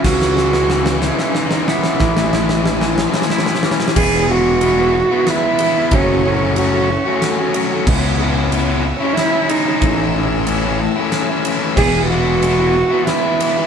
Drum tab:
CC |x-----------------------|------------------------|x-----------------------|------------------------|
RD |------------------------|------------------------|--------x-------x---x---|x-------x-------x---x---|
SD |o-o-o-o-o-o-o-o-o-o-o-o-|o-o-o-o-o-o-o-oooooooooo|----------------o-------|----------------o-------|
BD |o-----------------------|o-----------------------|o-----------------------|o-----------------------|

CC |x-----------------------|------------------------|x-----------------------|
RD |--------x-------x---x---|x-------x-------x---x---|--------x-------x---x---|
SD |----------------o-------|----------------o-------|----------------o-------|
BD |o-----------------------|o-----------------------|o-----------------------|